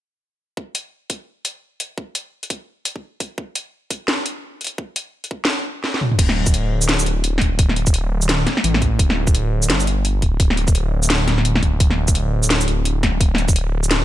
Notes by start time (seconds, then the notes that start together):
0.57 kick
0.75 closed hi-hat
1.10 kick, closed hi-hat
1.45 closed hi-hat
1.80 closed hi-hat
1.98 kick
2.15 closed hi-hat
2.43 closed hi-hat
2.50 kick, closed hi-hat
2.85 closed hi-hat
2.96 kick
3.20 kick, closed hi-hat
3.38 kick
3.56 closed hi-hat
3.90 kick, closed hi-hat
4.08 snare
4.26 closed hi-hat
4.61 closed hi-hat
4.64 closed hi-hat
4.67 closed hi-hat
4.78 kick
4.96 closed hi-hat
5.24 closed hi-hat
5.31 kick
5.45 snare
5.84 snare
5.94 snare
6.01 mid tom
6.12 mid tom
6.19 D1, kick, closed hi-hat, crash
6.29 snare
6.46 kick, shaker
6.54 closed hi-hat
6.82 shaker
6.89 snare, closed hi-hat
6.99 shaker
7.06 D1, closed hi-hat
7.24 closed hi-hat
7.38 kick, snare, closed hi-hat
7.52 D1
7.59 D1, kick, closed hi-hat
7.69 snare
7.76 closed hi-hat
7.87 kick, shaker
7.94 closed hi-hat
8.22 shaker
8.29 snare, closed hi-hat
8.47 snare, closed hi-hat
8.57 snare
8.64 A1, closed hi-hat
8.74 snare
8.82 kick, closed hi-hat
8.99 D1, kick, closed hi-hat
9.10 snare
9.27 kick, shaker
9.35 closed hi-hat
9.63 shaker
9.69 G1, snare, closed hi-hat
9.80 shaker
9.87 closed hi-hat
10.05 closed hi-hat
10.22 D1, kick, closed hi-hat
10.40 D1, kick, closed hi-hat
10.50 snare
10.57 closed hi-hat
10.68 kick, shaker
10.75 closed hi-hat
11.03 shaker
11.10 snare, closed hi-hat
11.27 D1, snare, closed hi-hat
11.38 snare
11.45 closed hi-hat
11.56 snare
11.63 kick, closed hi-hat
11.80 D1, kick, closed hi-hat
11.90 snare
12.08 kick, shaker
12.15 closed hi-hat
12.43 shaker
12.50 snare, closed hi-hat
12.61 shaker
12.68 D1, closed hi-hat
12.85 closed hi-hat
13.03 kick, snare, closed hi-hat
13.13 D1
13.21 D1, kick, closed hi-hat
13.35 snare, closed hi-hat
13.48 kick, shaker
13.56 closed hi-hat
13.84 shaker
13.91 snare, closed hi-hat